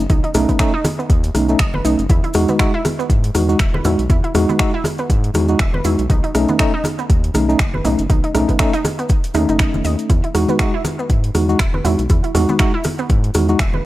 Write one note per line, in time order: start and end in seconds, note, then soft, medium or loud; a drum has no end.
0.10 0.21 B1 loud
0.10 0.21 D#4 medium
0.10 kick loud
0.10 closed hi-hat medium
0.10 high conga medium
0.10 maracas medium
0.24 0.30 D#4 medium
0.24 closed hi-hat soft
0.34 0.46 B1 loud
0.34 0.57 A3 medium
0.34 0.57 C#4 medium
0.34 0.57 D#4 loud
0.34 cross-stick medium
0.34 open hi-hat loud
0.34 low conga medium
0.34 maracas medium
0.49 0.55 B3 medium
0.49 kick medium
0.49 closed hi-hat soft
0.49 high conga medium
0.49 maracas soft
0.59 0.71 A3 loud
0.59 0.71 C#4 medium
0.59 0.71 D#4 loud
0.59 0.67 D#5 medium
0.59 finger snap loud
0.59 kick loud
0.59 closed hi-hat medium
0.59 maracas medium
0.74 0.83 D#4 loud
0.84 cross-stick medium
0.84 open hi-hat loud
0.84 high conga loud
0.84 maracas loud
0.99 1.02 B3 medium
0.99 maracas soft
1.10 1.31 D#2 medium
1.10 kick loud
1.10 closed hi-hat medium
1.10 maracas medium
1.24 closed hi-hat medium
1.24 maracas soft
1.35 1.56 B1 loud
1.35 1.46 A3 medium
1.35 1.46 C#4 medium
1.35 1.46 D#4 medium
1.35 cross-stick medium
1.35 open hi-hat loud
1.35 high conga medium
1.35 maracas medium
1.49 1.58 A3 medium
1.49 1.58 C#4 medium
1.49 1.58 D#4 medium
1.49 maracas soft
1.59 1.81 F#1 medium
1.59 1.67 D#5 medium
1.59 finger snap loud
1.59 kick loud
1.59 closed hi-hat medium
1.59 maracas medium
1.74 1.83 B4 medium
1.74 high conga medium
1.85 1.96 B1 loud
1.85 2.02 A3 medium
1.85 2.02 C#4 medium
1.85 1.89 D#4 medium
1.85 2.02 D#4 medium
1.85 open hi-hat loud
1.85 maracas medium
1.99 2.08 F#1 medium
1.99 closed hi-hat soft
1.99 maracas soft
2.09 2.21 E2 loud
2.09 2.21 E4 medium
2.09 kick loud
2.09 closed hi-hat medium
2.09 high conga loud
2.09 maracas medium
2.24 2.30 E4 medium
2.24 closed hi-hat soft
2.34 2.46 E2 loud
2.34 2.57 G#3 medium
2.34 2.57 D#4 medium
2.34 2.57 F#4 loud
2.34 cross-stick medium
2.34 open hi-hat loud
2.34 maracas medium
2.48 2.55 B3 medium
2.48 high conga medium
2.48 maracas soft
2.59 2.71 G#3 loud
2.59 2.71 D#4 medium
2.59 2.71 F#4 loud
2.59 2.67 E5 medium
2.59 finger snap loud
2.59 kick loud
2.59 closed hi-hat medium
2.59 maracas medium
2.74 2.83 E4 loud
2.85 cross-stick medium
2.85 open hi-hat loud
2.85 high conga loud
2.85 maracas medium
2.99 3.03 B3 medium
2.99 maracas soft
3.10 3.31 G#2 medium
3.10 kick loud
3.10 closed hi-hat medium
3.10 maracas medium
3.24 closed hi-hat medium
3.34 3.56 E2 medium
3.34 3.46 G#3 medium
3.34 3.46 D#4 medium
3.34 3.46 F#4 medium
3.34 cross-stick medium
3.34 open hi-hat loud
3.34 high conga medium
3.34 maracas loud
3.49 3.58 G#3 medium
3.49 3.58 D#4 medium
3.49 3.58 F#4 medium
3.49 maracas soft
3.59 3.81 E1 medium
3.59 3.67 E5 medium
3.59 finger snap loud
3.59 kick loud
3.59 closed hi-hat medium
3.59 maracas medium
3.74 3.83 B4 medium
3.74 high conga loud
3.85 3.96 E2 loud
3.85 4.02 G#3 medium
3.85 4.02 D#4 medium
3.85 3.89 E4 medium
3.85 4.02 F#4 medium
3.85 open hi-hat medium
3.85 low conga medium
3.85 maracas loud
3.99 4.08 B1 medium
3.99 closed hi-hat medium
3.99 maracas soft
4.10 4.21 E2 loud
4.10 4.21 E4 medium
4.10 kick loud
4.10 closed hi-hat medium
4.10 high conga medium
4.10 maracas medium
4.24 4.30 E4 medium
4.24 closed hi-hat soft
4.35 4.46 E2 medium
4.35 4.57 G#3 loud
4.35 4.57 D#4 medium
4.35 4.57 F#4 loud
4.35 cross-stick medium
4.35 open hi-hat loud
4.35 low conga medium
4.35 maracas medium
4.49 4.55 B3 medium
4.49 high conga medium
4.49 maracas soft
4.59 4.71 G#3 loud
4.59 4.71 D#4 medium
4.59 4.71 F#4 loud
4.59 4.67 E5 medium
4.59 finger snap loud
4.59 kick loud
4.59 closed hi-hat medium
4.59 maracas medium
4.74 4.83 E4 loud
4.84 cross-stick medium
4.84 open hi-hat medium
4.84 high conga loud
4.84 maracas medium
4.98 5.02 B3 medium
4.98 maracas soft
5.10 5.31 G#2 medium
5.10 kick loud
5.10 closed hi-hat medium
5.10 maracas medium
5.24 closed hi-hat medium
5.34 5.56 E2 medium
5.34 5.46 G#3 medium
5.34 5.46 D#4 medium
5.34 5.46 F#4 medium
5.34 cross-stick medium
5.34 open hi-hat loud
5.34 high conga medium
5.34 maracas medium
5.48 5.58 G#3 medium
5.48 5.58 D#4 medium
5.48 5.58 F#4 medium
5.48 maracas soft
5.59 5.81 E1 medium
5.59 5.67 E5 medium
5.59 finger snap loud
5.59 kick loud
5.59 closed hi-hat medium
5.59 maracas soft
5.74 5.83 B4 medium
5.74 high conga medium
5.84 5.96 E2 loud
5.84 6.02 G#3 medium
5.84 6.02 D#4 medium
5.84 5.89 E4 medium
5.84 6.02 F#4 medium
5.84 open hi-hat medium
5.84 maracas loud
5.99 6.08 B1 medium
5.99 closed hi-hat medium
5.99 maracas soft
6.10 6.21 B1 loud
6.10 6.21 D#4 medium
6.10 kick loud
6.10 closed hi-hat medium
6.10 high conga medium
6.10 maracas soft
6.24 6.30 D#4 medium
6.24 closed hi-hat soft
6.35 6.46 B1 medium
6.35 6.57 A3 loud
6.35 6.57 C#4 medium
6.35 6.57 D#4 loud
6.35 cross-stick medium
6.35 open hi-hat loud
6.35 maracas medium
6.48 6.55 B3 medium
6.48 high conga medium
6.48 maracas soft
6.59 6.71 A3 loud
6.59 6.71 C#4 medium
6.59 6.71 D#4 loud
6.59 6.67 D#5 medium
6.59 finger snap loud
6.59 kick loud
6.59 closed hi-hat medium
6.59 maracas soft
6.74 6.83 D#4 loud
6.84 cross-stick medium
6.84 open hi-hat medium
6.84 high conga medium
6.84 maracas medium
6.99 7.02 B3 medium
6.99 maracas soft
7.10 7.31 D#2 medium
7.10 kick loud
7.10 closed hi-hat medium
7.10 maracas soft
7.24 closed hi-hat medium
7.34 7.56 B1 loud
7.34 7.46 A3 medium
7.34 7.46 C#4 medium
7.34 7.46 D#4 medium
7.34 cross-stick medium
7.34 open hi-hat loud
7.34 high conga medium
7.34 maracas medium
7.49 7.57 A3 medium
7.49 7.58 C#4 medium
7.49 7.58 D#4 medium
7.49 maracas soft
7.59 7.81 F#1 medium
7.59 7.67 D#5 medium
7.59 finger snap loud
7.59 kick loud
7.59 closed hi-hat medium
7.59 maracas medium
7.74 7.83 B4 medium
7.74 high conga medium
7.85 7.96 B1 loud
7.85 8.02 A3 medium
7.85 8.02 C#4 medium
7.85 7.89 D#4 medium
7.85 8.02 D#4 medium
7.85 open hi-hat medium
7.85 low conga medium
7.85 maracas medium
7.99 8.08 F#1 medium
7.99 closed hi-hat medium
7.99 maracas soft
8.10 8.21 B1 loud
8.10 8.21 D#4 medium
8.10 kick loud
8.10 closed hi-hat medium
8.10 high conga medium
8.10 maracas medium
8.24 8.30 D#4 medium
8.24 closed hi-hat soft
8.35 8.46 B1 medium
8.35 8.57 A3 medium
8.35 8.57 C#4 medium
8.35 8.57 D#4 loud
8.35 cross-stick medium
8.35 open hi-hat loud
8.35 low conga medium
8.35 maracas medium
8.48 8.55 B3 medium
8.48 kick medium
8.48 closed hi-hat soft
8.48 high conga medium
8.48 maracas soft
8.59 8.71 A3 loud
8.59 8.71 C#4 medium
8.59 8.71 D#4 loud
8.59 8.67 D#5 medium
8.59 finger snap loud
8.59 kick loud
8.59 closed hi-hat medium
8.59 maracas soft
8.73 8.83 D#4 loud
8.73 finger snap soft
8.73 closed hi-hat soft
8.73 maracas soft
8.84 cross-stick medium
8.84 open hi-hat medium
8.84 high conga medium
8.84 maracas medium
8.99 9.02 B3 medium
8.99 closed hi-hat soft
8.99 maracas soft
9.09 kick loud
9.09 closed hi-hat medium
9.09 maracas soft
9.24 closed hi-hat medium
9.24 maracas soft
9.34 9.46 D#2 medium
9.34 10.08 A3 medium
9.34 10.08 C#4 medium
9.34 9.39 D#4 medium
9.34 10.09 D#4 loud
9.34 cross-stick medium
9.34 open hi-hat loud
9.34 high conga medium
9.34 maracas medium
9.49 9.81 F#1 medium
9.49 9.55 D#4 medium
9.49 closed hi-hat soft
9.49 maracas soft
9.59 9.71 D#4 loud
9.59 finger snap loud
9.59 kick loud
9.59 closed hi-hat medium
9.59 maracas soft
9.74 high conga medium
9.74 maracas soft
9.84 9.96 D#2 medium
9.84 9.89 D#5 medium
9.84 open hi-hat medium
9.84 maracas medium
9.99 closed hi-hat medium
9.99 maracas soft
10.10 10.21 E2 loud
10.10 10.21 E4 medium
10.10 kick loud
10.10 closed hi-hat medium
10.10 high conga medium
10.10 maracas soft
10.24 10.30 E4 medium
10.24 closed hi-hat soft
10.35 10.46 E2 medium
10.35 10.57 G#3 medium
10.35 10.57 D#4 medium
10.35 10.57 F#4 loud
10.35 cross-stick medium
10.35 open hi-hat loud
10.35 maracas medium
10.48 10.55 B3 medium
10.48 high conga medium
10.48 maracas soft
10.59 10.71 G#3 loud
10.59 10.71 D#4 medium
10.59 10.71 F#4 loud
10.59 10.67 E5 medium
10.59 finger snap loud
10.59 kick loud
10.59 closed hi-hat medium
10.59 maracas soft
10.74 10.83 E4 loud
10.85 cross-stick medium
10.85 open hi-hat loud
10.85 high conga loud
10.85 maracas medium
10.99 11.02 B3 medium
10.99 maracas soft
11.10 11.31 G#2 medium
11.10 kick loud
11.10 closed hi-hat medium
11.10 maracas soft
11.24 closed hi-hat medium
11.35 11.56 E2 medium
11.35 11.46 G#3 medium
11.35 11.46 D#4 medium
11.35 11.46 F#4 medium
11.35 cross-stick medium
11.35 open hi-hat loud
11.35 high conga medium
11.35 maracas medium
11.49 11.58 G#3 medium
11.49 11.58 D#4 medium
11.49 11.58 F#4 medium
11.49 maracas soft
11.59 11.81 E1 medium
11.59 11.67 E5 medium
11.59 finger snap loud
11.59 kick loud
11.59 closed hi-hat medium
11.59 maracas medium
11.74 11.83 B4 medium
11.74 high conga medium
11.84 11.96 E2 loud
11.84 12.02 G#3 medium
11.84 12.02 D#4 medium
11.84 11.89 E4 medium
11.84 12.02 F#4 medium
11.84 open hi-hat medium
11.84 low conga medium
11.84 maracas medium
11.99 12.08 B1 medium
11.99 closed hi-hat medium
11.99 maracas soft
12.09 12.21 E2 loud
12.09 12.21 E4 medium
12.09 kick loud
12.09 closed hi-hat medium
12.09 high conga medium
12.09 maracas medium
12.24 12.30 E4 medium
12.24 closed hi-hat soft
12.35 12.46 E2 medium
12.35 12.57 G#3 loud
12.35 12.57 D#4 medium
12.35 12.57 F#4 loud
12.35 cross-stick medium
12.35 open hi-hat loud
12.35 low conga medium
12.35 maracas loud
12.49 12.55 B3 medium
12.49 high conga medium
12.49 maracas soft
12.59 12.71 G#3 loud
12.59 12.71 D#4 medium
12.59 12.71 F#4 loud
12.59 12.67 E5 medium
12.59 finger snap loud
12.59 kick loud
12.59 closed hi-hat medium
12.59 maracas medium
12.74 12.83 E4 loud
12.84 cross-stick medium
12.84 open hi-hat loud
12.84 high conga loud
12.84 maracas loud
12.99 13.02 B3 medium
12.99 maracas soft
13.09 13.31 G#2 medium
13.09 kick loud
13.09 closed hi-hat medium
13.09 maracas medium
13.24 closed hi-hat medium
13.34 13.56 E2 medium
13.34 13.46 G#3 medium
13.34 13.46 D#4 medium
13.34 13.46 F#4 medium
13.34 cross-stick medium
13.34 open hi-hat loud
13.34 high conga medium
13.34 maracas loud
13.49 13.58 G#3 medium
13.49 13.58 D#4 medium
13.49 13.58 F#4 medium
13.49 maracas soft
13.59 13.81 E1 medium
13.59 13.67 E5 medium
13.59 finger snap loud
13.59 kick loud
13.59 closed hi-hat medium
13.59 maracas medium
13.74 13.83 B4 medium
13.74 high conga loud